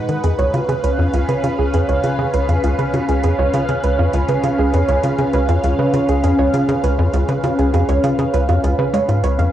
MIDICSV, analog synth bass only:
0, 0, Header, 1, 2, 480
1, 0, Start_track
1, 0, Tempo, 600000
1, 190, Time_signature, 4, 2, 24, 8
1, 7618, End_track
2, 0, Start_track
2, 0, Title_t, "Analog synth bass"
2, 0, Program_c, 0, 38
2, 69, Note_on_c, 0, 51, 73
2, 150, Note_off_c, 0, 51, 0
2, 190, Note_on_c, 0, 41, 93
2, 270, Note_off_c, 0, 41, 0
2, 309, Note_on_c, 0, 37, 94
2, 390, Note_off_c, 0, 37, 0
2, 430, Note_on_c, 0, 49, 96
2, 510, Note_off_c, 0, 49, 0
2, 549, Note_on_c, 0, 49, 99
2, 598, Note_off_c, 0, 49, 0
2, 669, Note_on_c, 0, 37, 79
2, 784, Note_off_c, 0, 37, 0
2, 789, Note_on_c, 0, 41, 96
2, 870, Note_off_c, 0, 41, 0
2, 908, Note_on_c, 0, 37, 103
2, 990, Note_off_c, 0, 37, 0
2, 1029, Note_on_c, 0, 49, 97
2, 1110, Note_off_c, 0, 49, 0
2, 1149, Note_on_c, 0, 49, 94
2, 1198, Note_off_c, 0, 49, 0
2, 1269, Note_on_c, 0, 37, 70
2, 1383, Note_off_c, 0, 37, 0
2, 1390, Note_on_c, 0, 41, 95
2, 1470, Note_off_c, 0, 41, 0
2, 1510, Note_on_c, 0, 37, 94
2, 1590, Note_off_c, 0, 37, 0
2, 1629, Note_on_c, 0, 49, 95
2, 1710, Note_off_c, 0, 49, 0
2, 1750, Note_on_c, 0, 49, 101
2, 1798, Note_off_c, 0, 49, 0
2, 1870, Note_on_c, 0, 37, 74
2, 1984, Note_off_c, 0, 37, 0
2, 1989, Note_on_c, 0, 41, 93
2, 2070, Note_off_c, 0, 41, 0
2, 2110, Note_on_c, 0, 37, 99
2, 2190, Note_off_c, 0, 37, 0
2, 2230, Note_on_c, 0, 49, 96
2, 2310, Note_off_c, 0, 49, 0
2, 2350, Note_on_c, 0, 49, 103
2, 2398, Note_off_c, 0, 49, 0
2, 2470, Note_on_c, 0, 37, 74
2, 2584, Note_off_c, 0, 37, 0
2, 2591, Note_on_c, 0, 41, 94
2, 2671, Note_off_c, 0, 41, 0
2, 2711, Note_on_c, 0, 37, 100
2, 2791, Note_off_c, 0, 37, 0
2, 2830, Note_on_c, 0, 49, 102
2, 2910, Note_off_c, 0, 49, 0
2, 2951, Note_on_c, 0, 49, 97
2, 2998, Note_off_c, 0, 49, 0
2, 3070, Note_on_c, 0, 37, 78
2, 3184, Note_off_c, 0, 37, 0
2, 3191, Note_on_c, 0, 41, 100
2, 3271, Note_off_c, 0, 41, 0
2, 3310, Note_on_c, 0, 37, 96
2, 3390, Note_off_c, 0, 37, 0
2, 3430, Note_on_c, 0, 49, 100
2, 3510, Note_off_c, 0, 49, 0
2, 3548, Note_on_c, 0, 49, 95
2, 3597, Note_off_c, 0, 49, 0
2, 3670, Note_on_c, 0, 37, 77
2, 3784, Note_off_c, 0, 37, 0
2, 3790, Note_on_c, 0, 41, 102
2, 3870, Note_off_c, 0, 41, 0
2, 3908, Note_on_c, 0, 37, 98
2, 3989, Note_off_c, 0, 37, 0
2, 4030, Note_on_c, 0, 49, 96
2, 4110, Note_off_c, 0, 49, 0
2, 4148, Note_on_c, 0, 49, 93
2, 4197, Note_off_c, 0, 49, 0
2, 4268, Note_on_c, 0, 37, 75
2, 4383, Note_off_c, 0, 37, 0
2, 4387, Note_on_c, 0, 41, 99
2, 4469, Note_off_c, 0, 41, 0
2, 4508, Note_on_c, 0, 37, 97
2, 4589, Note_off_c, 0, 37, 0
2, 4629, Note_on_c, 0, 49, 102
2, 4710, Note_off_c, 0, 49, 0
2, 4748, Note_on_c, 0, 49, 99
2, 4797, Note_off_c, 0, 49, 0
2, 4868, Note_on_c, 0, 37, 76
2, 4983, Note_off_c, 0, 37, 0
2, 4988, Note_on_c, 0, 41, 96
2, 5069, Note_off_c, 0, 41, 0
2, 5108, Note_on_c, 0, 37, 97
2, 5189, Note_off_c, 0, 37, 0
2, 5228, Note_on_c, 0, 49, 101
2, 5309, Note_off_c, 0, 49, 0
2, 5348, Note_on_c, 0, 49, 102
2, 5397, Note_off_c, 0, 49, 0
2, 5468, Note_on_c, 0, 37, 79
2, 5583, Note_off_c, 0, 37, 0
2, 5588, Note_on_c, 0, 41, 102
2, 5669, Note_off_c, 0, 41, 0
2, 5708, Note_on_c, 0, 37, 104
2, 5789, Note_off_c, 0, 37, 0
2, 5829, Note_on_c, 0, 49, 98
2, 5910, Note_off_c, 0, 49, 0
2, 5949, Note_on_c, 0, 49, 97
2, 5998, Note_off_c, 0, 49, 0
2, 6069, Note_on_c, 0, 37, 69
2, 6184, Note_off_c, 0, 37, 0
2, 6189, Note_on_c, 0, 41, 101
2, 6270, Note_off_c, 0, 41, 0
2, 6310, Note_on_c, 0, 37, 103
2, 6390, Note_off_c, 0, 37, 0
2, 6429, Note_on_c, 0, 49, 97
2, 6510, Note_off_c, 0, 49, 0
2, 6549, Note_on_c, 0, 49, 96
2, 6598, Note_off_c, 0, 49, 0
2, 6670, Note_on_c, 0, 37, 76
2, 6784, Note_off_c, 0, 37, 0
2, 6789, Note_on_c, 0, 41, 101
2, 6870, Note_off_c, 0, 41, 0
2, 6910, Note_on_c, 0, 37, 97
2, 6990, Note_off_c, 0, 37, 0
2, 7029, Note_on_c, 0, 49, 100
2, 7110, Note_off_c, 0, 49, 0
2, 7149, Note_on_c, 0, 56, 75
2, 7197, Note_off_c, 0, 56, 0
2, 7269, Note_on_c, 0, 44, 75
2, 7384, Note_off_c, 0, 44, 0
2, 7389, Note_on_c, 0, 37, 81
2, 7503, Note_off_c, 0, 37, 0
2, 7509, Note_on_c, 0, 41, 79
2, 7590, Note_off_c, 0, 41, 0
2, 7618, End_track
0, 0, End_of_file